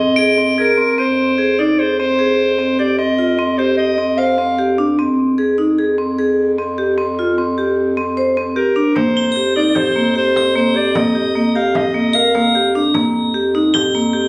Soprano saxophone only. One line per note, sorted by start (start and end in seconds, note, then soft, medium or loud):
0.00 0.55 D#5 medium
0.60 1.01 A#4 medium
0.99 1.61 C5 medium
1.59 1.81 D5 medium
1.79 1.99 C5 medium
1.99 2.75 C5 medium
2.79 2.97 D5 medium
2.98 3.60 D#5 medium
3.58 3.77 C5 medium
3.77 4.19 D#5 medium
4.18 4.78 F5 medium
8.55 8.97 A#4 medium
8.96 9.56 C5 medium
9.56 9.62 D5 medium
9.69 9.78 D5 soft
9.76 10.16 C5 medium
10.16 10.53 C5 medium
10.56 10.77 C5 medium
10.76 10.98 D5 medium
10.96 11.55 D#5 medium
11.56 11.78 F5 medium
11.76 12.16 D#5 medium
12.15 12.74 F5 medium